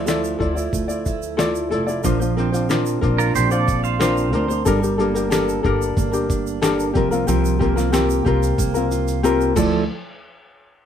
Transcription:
Already playing: upright bass D2, steel-string acoustic guitar F3 A3 F4
0.07 ukulele E4 F4 A4 D5, steel-string acoustic guitar A4, snare, shaker
0.24 shaker
0.39 upright bass D2, steel-string acoustic guitar E4, ukulele E4 F4 A4 D5, kick, shaker
0.55 ukulele E4 F4 D5, shaker
0.73 upright bass D2, steel-string acoustic guitar A3, kick, shaker
0.88 ukulele E4 F4 D5, shaker
1.06 steel-string acoustic guitar E4, kick, shaker
1.22 shaker
1.37 steel-string acoustic guitar A3, ukulele E4 F4 A4 D5, snare, shaker
1.55 shaker
1.71 upright bass F1, ukulele E4 F4 A4 D5, steel-string acoustic guitar A4, shaker
1.87 ukulele E4 F4 D5, shaker
2.04 upright bass A#1, steel-string acoustic guitar F3, ukulele D4 F4 A#4 C5, kick, shaker
2.20 ukulele D4 F4 C5, shaker
2.37 steel-string acoustic guitar C4, ukulele D4 F4 A#4 C5, shaker
2.52 ukulele D4 F4 C5, shaker
2.69 ukulele D4 F4 A#4 C5, snare, shaker
2.86 shaker
3.01 upright bass A#1, steel-string acoustic guitar D4, ukulele D4 F4 A#4 C5, kick, shaker
3.18 pedal steel guitar F4 A#4, shaker
3.35 upright bass A#1, steel-string acoustic guitar C4, pedal steel guitar G4 C5, shaker
3.51 ukulele D4 F4 C5, pedal steel guitar A4 D5, shaker
3.68 steel-string acoustic guitar D4, kick, shaker
3.84 pedal steel guitar C5 F5, shaker
3.99 steel-string acoustic guitar C4, ukulele D4 F4 A#4 C5, snare, shaker
4.17 shaker
4.33 upright bass D2, ukulele D4 F4 A#4 C5, steel-string acoustic guitar A#4, shaker
4.48 ukulele D4 C5, shaker
4.65 upright bass G1, steel-string acoustic guitar G3, ukulele D4 G4 A4 A#4, kick, shaker
4.82 ukulele D4 G4 A#4, shaker
4.98 steel-string acoustic guitar A#3, ukulele D4 G4 A4 A#4, shaker
5.15 ukulele D4 G4 A#4, shaker
5.30 ukulele D4 G4 A4 A#4, steel-string acoustic guitar A4, snare, shaker
5.49 shaker
5.63 upright bass G1, ukulele D4 G4 A4 A#4, steel-string acoustic guitar D4, kick, shaker
5.82 shaker
5.97 upright bass G1, steel-string acoustic guitar A#3, kick, shaker
6.12 ukulele D4 G4 A#4, shaker
6.30 steel-string acoustic guitar D4, kick, shaker
6.47 shaker
6.62 steel-string acoustic guitar A#3, ukulele D4 G4 A4 A#4, snare, shaker
6.80 shaker
6.94 upright bass C2, steel-string acoustic guitar F3, ukulele C4 F4 G4 A#4, kick, shaker
7.11 ukulele C4 F4 A#4, shaker
7.27 upright bass C2, steel-string acoustic guitar F3, ukulele C4 F4 G4 A#4, shaker
7.45 shaker
7.59 steel-string acoustic guitar A#3, ukulele C4 F4 G4 A#4, kick, shaker
7.76 ukulele C4 F4 A#4, snare, shaker
7.92 ukulele C4 F4 G4 A#4, steel-string acoustic guitar G4, snare, shaker
8.10 shaker
8.25 upright bass C2, ukulele C4 F4 G4 A#4, steel-string acoustic guitar F4, kick, shaker
8.43 shaker
8.58 upright bass C2, steel-string acoustic guitar A#3, kick, shaker
8.74 ukulele C4 F4 A#4, shaker
8.91 steel-string acoustic guitar F4, shaker
9.08 shaker
9.23 steel-string acoustic guitar A#3, ukulele C4 F4 G4 A#4, shaker
9.41 shaker
9.56 upright bass D2, steel-string acoustic guitar F3 A3 E4 A4, ukulele E4 F4 A4 D5, kick, crash, shaker

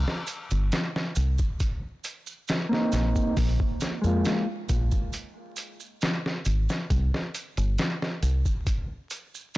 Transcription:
0.08 snare
0.27 closed hi-hat, maracas
0.51 fingered electric bass G1, closed hi-hat, maracas
0.72 snare, closed hi-hat, maracas
0.96 snare
1.15 fingered electric bass C2, closed hi-hat, maracas
1.38 kick, maracas
1.60 kick, closed hi-hat, maracas
2.04 closed hi-hat, maracas
2.27 maracas
2.48 snare, closed hi-hat, maracas
2.69 clean electric guitar A#3 C4, snare
2.74 clean electric guitar D#4
2.92 fingered electric bass A#1, snare, closed hi-hat, maracas
3.16 kick, maracas
3.37 fingered electric bass A#1, kick, open hi-hat, maracas
3.60 kick
3.80 snare, closed hi-hat, maracas
4.02 fingered electric bass F2, clean electric guitar G#3 A#3, maracas
4.06 clean electric guitar F4
4.25 snare, closed hi-hat, maracas
4.69 fingered electric bass A#1, kick, closed hi-hat, maracas
4.91 kick, maracas
5.13 closed hi-hat, maracas
5.56 closed hi-hat, maracas
5.80 maracas
6.01 snare, closed hi-hat, maracas
6.26 snare
6.45 fingered electric bass G#1, closed hi-hat, maracas
6.69 snare, maracas
6.90 fingered electric bass C2, kick, closed hi-hat, maracas
7.14 snare
7.35 closed hi-hat, maracas
7.57 fingered electric bass G1, closed hi-hat, maracas
7.78 snare, closed hi-hat, maracas
8.02 snare
8.23 fingered electric bass C2, closed hi-hat, maracas
8.46 kick, maracas
8.67 kick, closed hi-hat, maracas
9.10 closed hi-hat, maracas
9.35 maracas
9.54 maracas

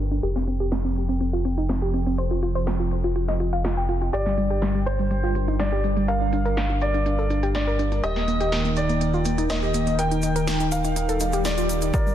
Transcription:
Already playing: analog synth bass G1, analog synth pad G3 D4 A#4 G5
0.11 synth pluck D4, closed hi-hat, shaker
0.23 analog synth bass F1, analog synth pad F3 C4 A4, synth pluck G4, closed hi-hat, shaker
0.36 synth pluck C4, snare
0.46 synth pluck C4, closed hi-hat, shaker
0.60 synth pluck G4, closed hi-hat, shaker
0.72 synth pluck C4, snare, closed hi-hat
0.84 synth pluck C4, closed hi-hat
0.96 closed hi-hat, shaker
1.09 synth pluck C4, closed hi-hat, shaker
1.21 synth pluck C4, closed hi-hat, shaker
1.33 synth pluck F4, shaker
1.45 synth pluck C4, closed hi-hat, shaker
1.58 synth pluck D#4, closed hi-hat, shaker
1.69 synth pluck C4, snare, closed hi-hat
1.82 synth pluck G4, shaker
1.94 synth pluck C4, closed hi-hat, shaker
2.06 synth pluck C4, closed hi-hat, shaker
2.18 synth pluck C5, closed hi-hat, shaker
2.30 synth pluck F4, closed hi-hat, shaker
2.43 synth pluck F4, closed hi-hat, shaker
2.55 synth pluck C5, closed hi-hat, shaker
2.67 synth pluck F4, snare, closed hi-hat
2.79 synth pluck F4, closed hi-hat, shaker
2.91 closed hi-hat, shaker
3.03 synth pluck F4, closed hi-hat, shaker
3.15 synth pluck F4, closed hi-hat, shaker
3.28 synth pluck D#5, snare, shaker
3.40 synth pluck F4, closed hi-hat, shaker
3.53 synth pluck F5, closed hi-hat, shaker
3.64 synth pluck F4, snare, closed hi-hat, shaker
3.77 synth pluck G5, shaker
3.89 synth pluck F4, closed hi-hat, shaker
4.02 synth pluck F4, closed hi-hat, shaker
4.13 analog synth bass G1, analog synth pad G3 D4 A#4 G5, synth pluck G4, grand piano D5, closed hi-hat, shaker
4.26 synth pluck G3, snare, shaker
4.38 synth pluck G3, closed hi-hat, shaker
4.50 synth pluck G4, closed hi-hat, shaker
4.62 synth pluck G3, snare, closed hi-hat, shaker
4.75 synth pluck G3, closed hi-hat, shaker
4.86 grand piano C5, closed hi-hat, shaker
4.99 synth pluck G3, closed hi-hat, shaker
5.11 synth pluck G3, closed hi-hat, shaker
5.24 synth pluck F4, shaker
5.35 synth pluck G3, closed hi-hat, shaker
5.48 synth pluck D#4, closed hi-hat, shaker
5.59 synth pluck G3, grand piano D5, snare, closed hi-hat, shaker
5.72 synth pluck G4, shaker
5.84 synth pluck G3, closed hi-hat, shaker
5.96 synth pluck G3, closed hi-hat, shaker
6.08 synth pluck A#4, grand piano F5, analog synth pad F5, closed hi-hat, shaker
6.21 synth pluck D4, shaker
6.32 synth pluck D4, closed hi-hat, shaker
6.45 synth pluck A#4, closed hi-hat, shaker
6.57 synth pluck D4, snare, closed hi-hat, shaker
6.69 synth pluck D4, closed hi-hat, shaker
6.80 grand piano D5, closed hi-hat, shaker
6.94 synth pluck D4, closed hi-hat, shaker
7.06 synth pluck D4, closed hi-hat, shaker
7.18 synth pluck A4, shaker
7.30 synth pluck D4, closed hi-hat, shaker
7.43 synth pluck G4, closed hi-hat, shaker
7.55 synth pluck D4, grand piano D5, snare, closed hi-hat, shaker
7.67 synth pluck A#4, shaker
7.79 synth pluck D4, closed hi-hat, shaker
7.92 synth pluck D4, closed hi-hat, shaker
8.03 analog synth bass D#1, analog synth pad D#3 D#4 G5, synth pluck G4, grand piano D#5, closed hi-hat, shaker
8.16 synth pluck A#3, snare, shaker
8.28 synth pluck A#3, closed hi-hat, shaker
8.41 synth pluck G4, closed hi-hat, shaker
8.52 synth pluck A#3, snare, closed hi-hat, shaker
8.65 synth pluck A#3, closed hi-hat, shaker
8.76 grand piano D5, closed hi-hat, shaker
8.89 synth pluck A#3, closed hi-hat, shaker
9.01 synth pluck A#3, closed hi-hat, shaker
9.14 synth pluck F4, shaker
9.25 synth pluck A#3, closed hi-hat, shaker
9.38 synth pluck D#4, closed hi-hat, shaker
9.49 synth pluck A#3, grand piano D#5, snare, closed hi-hat, shaker
9.62 synth pluck G4, shaker
9.74 synth pluck A#3, closed hi-hat, shaker
9.87 synth pluck A#3, closed hi-hat, shaker
9.99 synth pluck A#4, grand piano G5, closed hi-hat, shaker
10.11 synth pluck D#4, closed hi-hat, shaker
10.22 synth pluck D#4, closed hi-hat, shaker
10.36 synth pluck A#4, closed hi-hat, shaker
10.47 synth pluck D#4, snare, closed hi-hat, shaker
10.60 synth pluck D#4, closed hi-hat, shaker
10.72 grand piano F5, closed hi-hat, shaker
10.84 synth pluck D#4, closed hi-hat, shaker
10.96 synth pluck D#4, closed hi-hat, swell, shaker
11.09 synth pluck A4, closed hi-hat, shaker
11.20 synth pluck D#4, closed hi-hat, shaker
11.32 synth pluck G4, closed hi-hat, shaker
11.45 synth pluck D#4, grand piano D5, snare, closed hi-hat, shaker
11.58 synth pluck F4, closed hi-hat, shaker
11.69 synth pluck D#4, closed hi-hat, shaker
11.81 synth pluck D#4, closed hi-hat, shaker
11.94 analog synth bass G1, analog synth pad A#3 D4 G4, synth pluck G4, grand piano A#4 D5, kick, closed hi-hat, riser, shaker
12.06 synth pluck G3, shaker

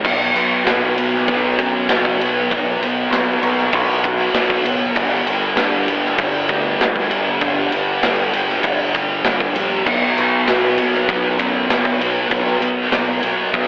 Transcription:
0.02 fingered electric bass B1, distorted electric guitar B2 F#3 B3, kick, crash
0.34 fingered electric bass B1, distorted electric guitar F#3 B3, ride
0.64 distorted electric guitar B2 F#3 B3, fingered electric bass B2, snare, ride
0.97 distorted electric guitar F#3 B3, ride
1.14 snare
1.27 fingered electric bass B1, distorted electric guitar B2 F#3 B3, kick, ride
1.58 fingered electric bass F#2, distorted electric guitar B3, kick, ride
1.62 distorted electric guitar F#3
1.89 fingered electric bass F#1, distorted electric guitar B2 F#3, snare, ride
1.93 distorted electric guitar B3
2.05 kick
2.19 fingered electric bass B1, distorted electric guitar F#3 B3, ride
2.51 fingered electric bass B1, distorted electric guitar B2 F#3 B3, kick, ride
2.81 fingered electric bass B1, distorted electric guitar B3, ride
2.85 distorted electric guitar F#3
3.11 fingered electric bass B1, distorted electric guitar B2 F#3, snare, ride
3.16 distorted electric guitar B3
3.41 fingered electric bass B1, distorted electric guitar B3, ride
3.46 distorted electric guitar F#3
3.58 snare
3.73 fingered electric bass B1, distorted electric guitar B2 F#3 B3, kick, ride
4.04 distorted electric guitar F#3 B3, kick, ride
4.34 fingered electric bass B1, distorted electric guitar B2 F#3 B3, snare, ride
4.50 kick
4.65 fingered electric bass F#1, distorted electric guitar F#3 B3, ride
4.95 fingered electric bass G1, distorted electric guitar G2 D3 G3, kick, ride
5.26 fingered electric bass G1, distorted electric guitar D3 G3, ride
5.56 fingered electric bass G2, distorted electric guitar G2, snare, ride
5.60 distorted electric guitar D3 G3
5.88 distorted electric guitar D3 G3, ride
6.04 snare
6.18 fingered electric bass G1, distorted electric guitar G2 D3 G3, kick, ride
6.49 fingered electric bass D2, distorted electric guitar D3 G3, kick, ride
6.80 fingered electric bass D2, distorted electric guitar G2 D3 G3, snare, ride
6.96 kick
7.11 fingered electric bass G1, distorted electric guitar D3 G3, ride
7.41 fingered electric bass G1, distorted electric guitar G2 D3 G3, kick, ride
7.72 fingered electric bass G1, distorted electric guitar D3 G3, ride
8.02 fingered electric bass G1, distorted electric guitar G2 D3 G3, snare, ride
8.33 fingered electric bass G1, distorted electric guitar D3 G3, ride
8.49 snare
8.62 fingered electric bass G1, distorted electric guitar G2 D3 G3, kick, ride
8.93 distorted electric guitar D3 G3, kick, ride
9.24 fingered electric bass G1, distorted electric guitar G2 D3 G3, snare, ride
9.40 kick
9.54 fingered electric bass A#1, distorted electric guitar D3 G3, ride
9.84 fingered electric bass B1, distorted electric guitar B2 F#3 B3, kick, crash
10.17 fingered electric bass B1, distorted electric guitar F#3 B3, ride
10.47 distorted electric guitar B2 F#3 B3, fingered electric bass B2, snare, ride
10.78 distorted electric guitar B3, ride
10.82 distorted electric guitar F#3
10.93 snare
11.08 fingered electric bass B1, distorted electric guitar B2 F#3, kick, ride
11.12 distorted electric guitar B3
11.38 fingered electric bass F#2, distorted electric guitar F#3 B3, kick, ride
11.67 fingered electric bass F#1, distorted electric guitar B2 F#3 B3, snare, ride
11.85 kick
11.98 fingered electric bass B1, distorted electric guitar F#3 B3, ride
12.27 fingered electric bass B1, distorted electric guitar B2 F#3 B3, ride
12.31 kick
12.59 fingered electric bass B1, distorted electric guitar F#3 B3, ride
12.89 fingered electric bass B1, distorted electric guitar B2 F#3 B3, snare, ride
13.21 fingered electric bass B1, distorted electric guitar F#3 B3, ride
13.53 fingered electric bass B1, distorted electric guitar B2 F#3 B3, kick, ride

